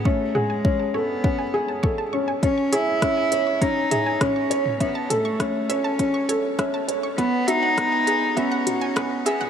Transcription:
<<
  \new Staff \with { instrumentName = "Synth arpeggio sound" } { \time 4/4 \key cis \minor \tempo 4 = 101 cis''16 r16 fis''16 gis''16 r16 a''16 cis''16 r16 fis''16 gis''16 r16 a''16 cis'''16 a''16 cis'''16 gis''16 | r16 cis'''16 cis''16 r16 e''16 gis''16 r16 cis'''16 cis''16 r16 e''16 gis''16 r16 cis'''16 cis''16 r16 | e''16 a''16 r16 cis'''16 cis''16 r16 e''16 a''16 r16 cis'''16 cis''16 r16 e''16 a''16 r16 cis'''16 | b'16 r16 e''16 fis''16 r16 gis''16 b'16 r16 e''16 fis''16 r16 gis''16 b'16 r16 e''16 fis''16 | }
  \new Staff \with { instrumentName = "Felt piano" } { \time 4/4 \key cis \minor cis'8 gis'8 cis'8 a'8 cis'8 gis'8 a'8 cis'8 | cis'8 gis'8 cis'8 cis''8 cis'8 gis'8 cis'8 cis''8 | cis'8 a'8 cis'8 cis''8 cis'8 a'8 cis'8 cis''8 | b8 fis'8 b8 gis'8 b8 fis'8 b8 gis'8 | }
  \new Staff \with { instrumentName = "Cello" } { \time 4/4 \key cis \minor a8 gis4 b4. r4 | cis'8 e'4. dis'4 cis'4 | b8 a4 cis'4. r4 | b8 dis'4. cis'4. b8 | }
  \new DrumStaff \with { instrumentName = "Drums" } \drummode { \time 4/4 bd8 toml8 bd4 bd4 bd4 | <hh bd>8 hh8 <hh bd ss>8 hh8 <hh bd>8 <hh toml>8 <hh bd ss toml>8 hh16 toml16 | <hh bd>8 <hh toml>8 <hh bd ss>8 hh8 <hh bd>8 hh8 <hh bd ss>8 hh8 | <hh bd>8 hh8 <hh bd ss>8 hh8 <hh bd>8 <hh toml>8 <hh bd ss toml>8 hh16 toml16 | }
>>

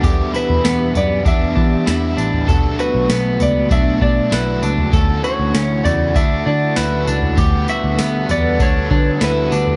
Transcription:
<<
  \new Staff \with { instrumentName = "Electric slide guitar" } { \time 4/4 \key b \minor \tempo 4 = 98 r8 b'4 d''8 e''4. r8 | r8 b'4 d''8 e''8 d''8 b'8. r16 | r8 cis''4 d''8 e''8 d''8 b'8. r16 | r8 e''4 d''8 cis''4 b'8. r16 | }
  \new Staff \with { instrumentName = "Ambient pad" } { \time 4/4 \key b \minor << { <e b g' fis''>1 | b1 | <e' fis''>1 | <d' a' b'>1 | } \\ { d'1 | a1~ | a1 | r1 | } >> }
  \new Staff \with { instrumentName = "Clean electric guitar" } { \time 4/4 \key b \minor g'8 e'8 b8 b8 d'8 d'8 e'8 d'8 | a'8 fis'8 b8 b8 d'8 d'8 e'8 d'8 | a'8 fis'8 cis'8 cis8 d'8 d'8 e'8 d'8 | g'8 fis'8 b8 b8 d'8 d'8 e'8 d'8 | }
  \new Staff \with { instrumentName = "Overdriven electric guitar" } { \time 4/4 \key b \minor <e, b, e d' e'>2 <e g d' e'>4 <e g d' e'>4 | <b, fis a d' fis'>2 <fis a d' fis'>4 <fis a d' fis'>4 | <d a cis' fis'>4. <a fis'>8 <d a fis'>4 <a cis' fis'>4 | <d g b fis'>2 <d g b fis'>4 <d g b fis'>4 | }
  \new Staff \with { instrumentName = "Picked electric bass" } { \clef bass \time 4/4 \key b \minor e,8 r16 e,16 e,8 fis,8 e,8 e8 e,8 a,,8 | b,,8 r16 b,,16 b,,8 cis,8 b,,8 b,8 b,,8 cis,8 | d,8 r16 d,16 d,8 e,8 d,8 d8 d,8 cis,8 | d,8 r16 d,16 d,8 e,8 d,8 d8 d,8 d,8 | }
  \new DrumStaff \with { instrumentName = "Drums" } \drummode { \time 4/4 <bd tamb tomfh>8 tamb16 tomfh16 <sn tamb>8 <tamb tomfh>8 <bd tamb tomfh>8 bd8 <sn tamb>8 tamb16 tomfh16 | <bd tamb tomfh>8 tamb8 <sn tamb>8 <tamb tomfh>8 <bd tamb tomfh>8 bd8 <sn tamb>8 tamb16 tomfh16 | <bd tamb tomfh>8 tamb8 <sn tamb>8 <tamb tomfh>8 <bd tamb tomfh>4 <sn tamb>8 tamb16 tomfh16 | <bd tamb tomfh>8 tamb8 <sn tamb>8 <tamb tomfh>8 <bd tamb tomfh>8 bd8 <sn tamb>8 tamb16 tomfh16 | }
>>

